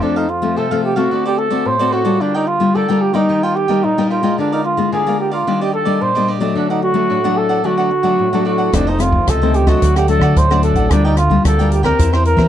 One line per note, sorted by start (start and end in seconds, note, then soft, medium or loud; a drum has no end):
0.00 0.54 F2 medium
0.00 0.25 F3 medium
0.00 0.25 A3 medium
0.00 0.25 C4 medium
0.00 0.19 D4 medium
0.00 0.15 F4 soft
0.00 0.15 A4 medium
0.00 0.15 C5 soft
0.00 0.15 F5 medium
0.16 0.31 D#4 medium
0.16 0.28 A4 medium
0.16 0.28 C5 medium
0.16 0.28 F5 medium
0.28 0.59 F4 medium
0.28 muted cavaquinho stroke soft
0.42 0.66 F3 medium
0.42 0.66 A3 medium
0.42 0.66 C4 medium
0.56 1.09 C3 medium
0.56 0.69 F4 soft
0.56 0.70 A4 soft
0.56 0.84 A4 medium
0.56 0.70 C5 medium
0.56 0.70 F5 medium
0.71 0.94 F3 medium
0.71 0.94 A3 medium
0.71 0.94 C4 medium
0.71 0.96 A4 medium
0.71 0.96 C5 medium
0.71 0.95 F5 medium
0.84 0.98 G4 medium
0.96 1.47 A3 medium
0.96 1.48 C4 medium
0.96 1.25 F#4 medium
0.96 1.48 F#4 medium
0.96 1.10 A4 medium
0.96 1.10 C5 medium
0.96 1.09 F5 medium
1.11 1.63 D3 medium
1.11 1.24 F#4 soft
1.11 1.24 A4 soft
1.11 1.25 C5 soft
1.11 1.24 D5 medium
1.26 1.40 G4 medium
1.26 1.37 A4 soft
1.26 1.37 C5 medium
1.26 1.37 D5 medium
1.38 1.68 A4 medium
1.38 muted cavaquinho stroke soft
1.50 1.74 A3 medium
1.50 1.75 C4 medium
1.50 1.75 F#4 medium
1.50 1.79 A4 medium
1.50 1.78 C5 medium
1.50 1.78 D5 medium
1.65 2.17 A2 medium
1.65 1.94 C5 loud
1.79 2.03 A3 medium
1.79 2.03 C4 medium
1.79 2.03 F#4 medium
1.79 1.91 A4 medium
1.79 1.92 C5 medium
1.79 1.92 D5 medium
1.92 2.05 F#4 medium
1.92 2.22 F#4 medium
1.92 2.05 A4 medium
1.92 2.04 C5 medium
1.92 2.03 D5 medium
2.05 2.56 G3 medium
2.05 2.56 A#3 medium
2.05 2.56 F4 medium
2.05 2.19 A4 medium
2.05 2.19 C5 medium
2.05 2.18 D5 medium
2.20 2.73 D3 medium
2.20 2.37 D4 medium
2.20 2.33 F4 soft
2.20 2.33 A#4 medium
2.20 2.33 D5 medium
2.20 2.33 G5 medium
2.34 2.49 D#4 medium
2.34 2.46 A#4 medium
2.34 2.46 D5 medium
2.34 2.46 G5 medium
2.47 2.77 F4 medium
2.47 muted cavaquinho stroke soft
2.60 2.84 G3 medium
2.60 2.84 A#3 medium
2.60 2.84 F4 medium
2.75 3.27 D3 medium
2.75 2.87 F4 soft
2.75 3.03 A4 medium
2.75 2.88 A#4 medium
2.75 2.88 D5 medium
2.75 2.87 G5 medium
2.88 3.12 G3 medium
2.88 3.12 A#3 medium
2.88 3.12 F4 medium
2.88 3.14 A#4 medium
2.88 3.13 D5 medium
2.88 3.13 G5 medium
3.01 3.16 G4 medium
3.13 3.65 G3 medium
3.13 3.65 A#3 medium
3.13 3.65 D#4 medium
3.13 3.45 D#4 medium
3.13 3.28 A#4 medium
3.13 3.28 D5 medium
3.13 3.27 G5 medium
3.29 3.81 D#3 medium
3.29 3.42 G4 soft
3.29 3.42 A#4 soft
3.29 3.42 D#5 soft
3.29 3.42 G5 medium
3.43 3.57 F4 medium
3.43 3.55 A#4 medium
3.43 3.55 D#5 medium
3.43 3.56 G5 medium
3.56 3.85 G4 medium
3.56 muted cavaquinho stroke soft
3.68 3.92 G3 medium
3.68 3.92 A#3 medium
3.68 3.93 D#4 medium
3.68 3.96 A#4 medium
3.68 3.96 D#5 medium
3.68 3.95 G5 medium
3.84 4.36 A#2 medium
3.84 4.10 D#4 medium
3.98 4.21 G3 medium
3.98 4.21 A#3 medium
3.98 4.21 D#4 medium
3.98 4.10 A#4 medium
3.98 4.10 D#5 medium
3.98 4.10 G5 medium
4.10 4.36 F4 medium
4.10 4.23 G4 soft
4.10 4.24 A#4 medium
4.10 4.23 D#5 medium
4.10 4.22 G5 medium
4.23 4.74 G#3 medium
4.23 4.74 A#3 medium
4.23 4.74 F4 medium
4.23 4.37 A#4 medium
4.23 4.37 D#5 medium
4.23 4.37 G5 medium
4.38 4.90 D3 medium
4.38 4.54 D4 medium
4.38 4.51 G#4 soft
4.38 4.51 A#4 medium
4.38 4.51 D5 medium
4.38 4.52 F5 medium
4.52 4.64 D#4 medium
4.52 4.63 A#4 medium
4.52 4.64 D5 medium
4.52 4.64 F5 medium
4.64 4.90 F4 medium
4.64 muted cavaquinho stroke soft
4.77 5.01 G#3 medium
4.77 5.01 A#3 medium
4.77 5.02 F4 medium
4.92 5.44 D3 medium
4.92 5.05 G#4 soft
4.92 5.18 G#4 medium
4.92 5.05 A#4 soft
4.92 5.06 D5 medium
4.92 5.06 F5 soft
5.06 5.43 G#3 medium
5.06 5.43 A#3 medium
5.06 5.43 F4 medium
5.06 5.32 A#4 soft
5.06 5.30 D5 medium
5.06 5.32 F5 medium
5.20 5.32 G4 medium
5.31 5.63 F4 medium
5.31 5.46 A#4 medium
5.31 5.45 D5 medium
5.31 5.46 F5 medium
5.47 5.99 D#3 medium
5.47 5.84 G3 medium
5.47 5.84 A#3 medium
5.47 5.60 D4 soft
5.47 5.84 D4 medium
5.47 5.60 G4 soft
5.47 5.60 D5 medium
5.47 5.60 D#5 medium
5.61 5.73 G4 medium
5.61 5.72 G4 medium
5.61 5.73 D5 medium
5.61 5.72 D#5 medium
5.73 6.03 A4 medium
5.73 muted cavaquinho stroke soft
5.85 6.10 G3 medium
5.85 6.10 A#3 medium
5.85 6.10 D4 medium
5.85 6.13 G4 medium
5.85 6.13 D5 medium
5.85 6.13 D#5 medium
6.01 6.53 A#2 medium
6.01 6.29 C5 medium
6.15 6.39 G3 medium
6.15 6.39 A#3 medium
6.15 6.39 D4 medium
6.15 6.27 G4 medium
6.15 6.28 D5 medium
6.15 6.27 D#5 medium
6.28 6.41 D4 soft
6.28 6.41 G4 medium
6.28 6.40 D5 medium
6.28 6.40 D#5 medium
6.40 6.91 F#3 medium
6.40 6.92 A3 medium
6.40 6.92 D4 medium
6.40 6.55 G4 medium
6.40 6.54 D5 medium
6.40 6.55 D#5 medium
6.55 7.07 D3 medium
6.55 6.68 D4 medium
6.55 6.69 D4 medium
6.55 6.69 A4 medium
6.55 6.69 D5 medium
6.55 6.69 F#5 medium
6.70 6.83 D#4 medium
6.70 6.81 A4 medium
6.70 6.81 D5 medium
6.70 6.82 F#5 medium
6.82 7.39 F#4 loud
6.82 muted cavaquinho stroke soft
6.94 7.18 F#3 medium
6.94 7.19 A3 medium
6.94 7.19 D4 medium
7.10 7.62 A2 medium
7.10 7.23 D4 soft
7.10 7.23 A4 soft
7.10 7.23 D5 soft
7.10 7.23 F#5 medium
7.24 7.61 F#3 medium
7.24 7.61 A3 medium
7.24 7.61 D4 medium
7.24 7.49 A4 medium
7.24 7.49 D5 medium
7.24 7.48 F#5 medium
7.37 7.67 A4 medium
7.49 7.63 A4 medium
7.49 7.63 D5 medium
7.49 7.63 F#5 medium
7.64 8.16 D3 medium
7.64 7.90 F#3 medium
7.64 7.90 A3 medium
7.64 7.77 D4 soft
7.64 7.90 D4 medium
7.64 8.46 F#4 medium
7.64 7.77 A4 soft
7.64 7.77 D5 medium
7.64 7.76 F#5 medium
7.78 7.90 A4 medium
7.78 7.90 D5 medium
7.78 7.90 F#5 medium
7.91 muted cavaquinho stroke soft
8.03 8.27 F#3 medium
8.03 8.28 A3 medium
8.03 8.28 D4 medium
8.03 8.31 A4 medium
8.03 8.31 D5 medium
8.03 8.30 F#5 medium
8.19 8.71 A2 medium
8.33 8.69 F#3 medium
8.33 8.69 A3 medium
8.33 8.70 D4 medium
8.33 8.44 A4 medium
8.33 8.44 D5 medium
8.33 8.45 F#5 medium
8.45 8.58 D4 soft
8.45 8.76 F#4 medium
8.45 8.58 A4 medium
8.45 8.57 D5 medium
8.45 8.57 F#5 medium
8.58 8.72 A4 medium
8.58 8.72 D5 medium
8.58 8.71 F#5 medium
8.72 9.20 F1 medium
8.72 9.25 F2 medium
8.72 8.89 D#3 medium
8.72 8.90 A3 medium
8.72 8.90 C4 medium
8.72 8.90 D4 medium
8.72 8.85 F4 medium
8.72 8.86 A4 medium
8.72 8.86 C5 medium
8.72 8.86 D#5 medium
8.72 kick medium
8.72 cross-stick medium
8.72 closed hi-hat medium
8.87 9.02 D#4 medium
8.87 8.99 A4 medium
8.87 8.99 C5 medium
8.87 8.99 D#5 medium
8.98 9.25 D#3 medium
8.98 9.25 A3 medium
8.98 9.25 C4 medium
8.98 9.31 F4 medium
8.98 muted cavaquinho stroke soft
8.98 cross-stick medium
8.98 closed hi-hat soft
9.12 kick medium
9.27 9.74 C#2 medium
9.27 9.79 C3 medium
9.27 9.40 F4 soft
9.27 9.41 A4 soft
9.27 9.56 A4 medium
9.27 9.41 C5 medium
9.27 9.40 D#5 medium
9.27 kick medium
9.27 cross-stick medium
9.27 closed hi-hat medium
9.41 9.65 D#3 medium
9.41 9.65 A3 medium
9.41 9.65 C4 medium
9.41 9.67 A4 medium
9.41 9.66 C5 medium
9.41 9.66 D#5 medium
9.54 9.70 G4 medium
9.54 closed hi-hat soft
9.67 10.04 F#3 medium
9.67 10.04 A3 medium
9.67 10.04 D4 medium
9.67 9.95 F#4 medium
9.67 9.81 A4 medium
9.67 9.81 C5 medium
9.67 9.80 D#5 medium
9.67 kick medium
9.67 cross-stick medium
9.82 10.17 D2 medium
9.82 10.34 D3 medium
9.82 9.95 D4 soft
9.82 9.95 A4 soft
9.82 9.95 D5 medium
9.82 9.95 F#5 medium
9.82 kick medium
9.82 closed hi-hat medium
9.96 10.08 G4 medium
9.96 10.08 A4 medium
9.96 10.09 D5 medium
9.96 10.08 F#5 medium
9.96 cross-stick medium
9.96 closed hi-hat soft
10.08 10.45 F#3 medium
10.08 10.45 A3 medium
10.08 10.46 D4 medium
10.08 10.39 A4 loud
10.08 muted cavaquinho stroke soft
10.08 closed hi-hat soft
10.19 10.32 D3 medium
10.19 10.49 D5 medium
10.19 10.48 F#5 medium
10.19 kick medium
10.19 cross-stick medium
10.23 10.49 A4 medium
10.36 10.71 D2 medium
10.36 10.88 A2 medium
10.36 10.63 C5 loud
10.36 kick medium
10.36 closed hi-hat medium
10.50 10.87 F#3 medium
10.50 10.87 A3 medium
10.50 10.87 D4 medium
10.50 10.62 A4 medium
10.50 10.63 D5 medium
10.50 10.63 F#5 medium
10.50 cross-stick medium
10.63 10.76 D4 soft
10.63 10.92 A4 medium
10.63 10.76 A4 medium
10.63 10.75 D5 medium
10.63 10.75 F#5 medium
10.63 closed hi-hat soft
10.73 10.87 A1 medium
10.73 10.90 A4 soft
10.73 10.89 D5 medium
10.73 10.89 F#5 medium
10.73 kick medium
10.73 closed hi-hat soft
10.90 11.37 D2 loud
10.90 11.43 D3 medium
10.90 11.17 G3 medium
10.90 11.17 A#3 medium
10.90 11.07 D4 medium
10.90 11.03 F4 medium
10.90 11.17 F4 medium
10.90 11.04 A#4 medium
10.90 11.04 D5 soft
10.90 11.03 G5 medium
10.90 kick medium
10.90 cross-stick medium
10.90 closed hi-hat medium
11.05 11.17 D#4 medium
11.05 11.16 A#4 medium
11.05 11.17 D5 medium
11.05 11.17 G5 medium
11.17 11.43 F4 loud
11.17 muted cavaquinho stroke soft
11.17 cross-stick medium
11.17 closed hi-hat soft
11.30 11.54 G3 medium
11.30 11.54 A#3 medium
11.30 11.54 F4 medium
11.30 kick medium
11.45 11.91 D2 medium
11.45 11.97 D3 medium
11.45 11.58 F4 soft
11.45 11.71 A4 medium
11.45 11.58 A#4 soft
11.45 11.58 D5 medium
11.45 11.58 G5 medium
11.45 kick medium
11.45 cross-stick medium
11.45 closed hi-hat medium
11.59 11.82 G3 medium
11.59 11.82 A#3 medium
11.59 11.83 F4 medium
11.59 11.84 A#4 medium
11.59 11.83 D5 medium
11.59 11.82 G5 medium
11.59 closed hi-hat soft
11.72 11.84 G4 medium
11.72 closed hi-hat medium
11.83 12.35 A#3 medium
11.83 12.35 C4 medium
11.83 12.35 G4 medium
11.83 12.15 A#4 loud
11.83 11.98 A#4 medium
11.83 11.98 D5 medium
11.83 11.97 G5 medium
11.83 kick medium
11.83 cross-stick medium
11.98 12.34 E2 medium
11.98 12.48 E3 medium
11.98 12.11 E4 soft
11.98 12.12 A#4 medium
11.98 12.12 C5 medium
11.98 12.12 E5 medium
11.98 kick medium
11.98 closed hi-hat medium
12.13 12.24 A#4 medium
12.13 12.25 C5 medium
12.13 12.24 C5 medium
12.13 12.24 E5 medium
12.13 cross-stick medium
12.24 12.48 A#4 medium
12.24 muted cavaquinho stroke soft
12.24 closed hi-hat soft
12.36 12.48 E3 medium
12.36 12.48 A#3 medium
12.36 12.48 C4 medium
12.36 12.48 G4 medium
12.36 12.48 A#4 medium
12.36 12.48 C5 medium
12.36 12.48 E5 medium
12.36 kick medium
12.36 cross-stick medium